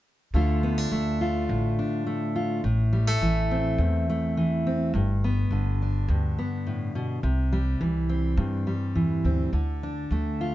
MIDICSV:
0, 0, Header, 1, 3, 480
1, 0, Start_track
1, 0, Tempo, 573614
1, 295, Time_signature, 4, 2, 24, 8
1, 8827, End_track
2, 0, Start_track
2, 0, Title_t, "Steel-string acoustic guitar"
2, 0, Program_c, 0, 25
2, 287, Note_on_c, 0, 50, 63
2, 291, Note_on_c, 0, 57, 47
2, 298, Note_on_c, 0, 62, 50
2, 301, Note_on_c, 0, 65, 53
2, 525, Note_off_c, 0, 62, 0
2, 528, Note_on_c, 0, 59, 50
2, 651, Note_off_c, 0, 59, 0
2, 651, Note_on_c, 0, 62, 44
2, 766, Note_off_c, 0, 57, 0
2, 769, Note_on_c, 0, 57, 54
2, 1002, Note_off_c, 0, 65, 0
2, 1012, Note_on_c, 0, 65, 52
2, 1245, Note_on_c, 0, 45, 53
2, 1486, Note_off_c, 0, 62, 0
2, 1496, Note_on_c, 0, 62, 50
2, 1718, Note_off_c, 0, 57, 0
2, 1728, Note_on_c, 0, 57, 55
2, 1961, Note_off_c, 0, 65, 0
2, 1971, Note_on_c, 0, 65, 52
2, 2181, Note_off_c, 0, 57, 0
2, 2183, Note_off_c, 0, 65, 0
2, 2185, Note_off_c, 0, 62, 0
2, 2200, Note_off_c, 0, 45, 0
2, 2208, Note_off_c, 0, 50, 0
2, 2210, Note_on_c, 0, 45, 59
2, 2449, Note_on_c, 0, 55, 51
2, 2571, Note_off_c, 0, 55, 0
2, 2571, Note_on_c, 0, 57, 42
2, 2693, Note_on_c, 0, 52, 57
2, 2939, Note_on_c, 0, 60, 49
2, 3171, Note_off_c, 0, 45, 0
2, 3175, Note_on_c, 0, 40, 52
2, 3411, Note_off_c, 0, 57, 0
2, 3427, Note_on_c, 0, 57, 49
2, 3649, Note_off_c, 0, 52, 0
2, 3659, Note_on_c, 0, 52, 56
2, 3896, Note_off_c, 0, 60, 0
2, 3904, Note_on_c, 0, 60, 52
2, 4107, Note_off_c, 0, 52, 0
2, 4109, Note_off_c, 0, 60, 0
2, 4110, Note_off_c, 0, 57, 0
2, 4133, Note_off_c, 0, 40, 0
2, 4139, Note_on_c, 0, 43, 66
2, 4387, Note_on_c, 0, 59, 56
2, 4618, Note_on_c, 0, 50, 54
2, 4871, Note_on_c, 0, 62, 46
2, 5087, Note_off_c, 0, 43, 0
2, 5097, Note_on_c, 0, 43, 56
2, 5332, Note_off_c, 0, 59, 0
2, 5342, Note_on_c, 0, 59, 50
2, 5578, Note_on_c, 0, 45, 55
2, 5814, Note_off_c, 0, 45, 0
2, 5818, Note_on_c, 0, 47, 54
2, 6026, Note_off_c, 0, 43, 0
2, 6029, Note_off_c, 0, 59, 0
2, 6033, Note_off_c, 0, 62, 0
2, 6048, Note_off_c, 0, 47, 0
2, 6051, Note_on_c, 0, 48, 62
2, 6056, Note_off_c, 0, 50, 0
2, 6297, Note_on_c, 0, 55, 54
2, 6532, Note_off_c, 0, 48, 0
2, 6537, Note_on_c, 0, 52, 49
2, 6772, Note_on_c, 0, 60, 48
2, 7007, Note_on_c, 0, 43, 52
2, 7244, Note_off_c, 0, 55, 0
2, 7254, Note_on_c, 0, 55, 44
2, 7483, Note_off_c, 0, 52, 0
2, 7493, Note_on_c, 0, 52, 54
2, 7734, Note_off_c, 0, 60, 0
2, 7743, Note_on_c, 0, 60, 49
2, 7942, Note_off_c, 0, 43, 0
2, 7945, Note_off_c, 0, 52, 0
2, 7950, Note_off_c, 0, 60, 0
2, 7974, Note_off_c, 0, 55, 0
2, 7976, Note_on_c, 0, 50, 61
2, 8228, Note_on_c, 0, 62, 50
2, 8466, Note_on_c, 0, 57, 55
2, 8709, Note_on_c, 0, 65, 55
2, 8827, Note_off_c, 0, 50, 0
2, 8827, Note_off_c, 0, 57, 0
2, 8827, Note_off_c, 0, 62, 0
2, 8827, Note_off_c, 0, 65, 0
2, 8827, End_track
3, 0, Start_track
3, 0, Title_t, "Upright bass"
3, 0, Program_c, 1, 32
3, 282, Note_on_c, 1, 38, 80
3, 743, Note_off_c, 1, 38, 0
3, 766, Note_on_c, 1, 38, 71
3, 1225, Note_off_c, 1, 38, 0
3, 1250, Note_on_c, 1, 33, 83
3, 1480, Note_off_c, 1, 33, 0
3, 2208, Note_on_c, 1, 33, 77
3, 2666, Note_off_c, 1, 33, 0
3, 2690, Note_on_c, 1, 33, 76
3, 3147, Note_off_c, 1, 33, 0
3, 3166, Note_on_c, 1, 40, 86
3, 3397, Note_off_c, 1, 40, 0
3, 4131, Note_on_c, 1, 31, 86
3, 4588, Note_off_c, 1, 31, 0
3, 4607, Note_on_c, 1, 31, 74
3, 5066, Note_off_c, 1, 31, 0
3, 5092, Note_on_c, 1, 38, 86
3, 5320, Note_off_c, 1, 38, 0
3, 6052, Note_on_c, 1, 36, 82
3, 6509, Note_off_c, 1, 36, 0
3, 6533, Note_on_c, 1, 36, 80
3, 6990, Note_off_c, 1, 36, 0
3, 7008, Note_on_c, 1, 43, 87
3, 7239, Note_off_c, 1, 43, 0
3, 7495, Note_on_c, 1, 40, 66
3, 7711, Note_off_c, 1, 40, 0
3, 7737, Note_on_c, 1, 38, 72
3, 7952, Note_off_c, 1, 38, 0
3, 7973, Note_on_c, 1, 38, 79
3, 8430, Note_off_c, 1, 38, 0
3, 8457, Note_on_c, 1, 38, 75
3, 8827, Note_off_c, 1, 38, 0
3, 8827, End_track
0, 0, End_of_file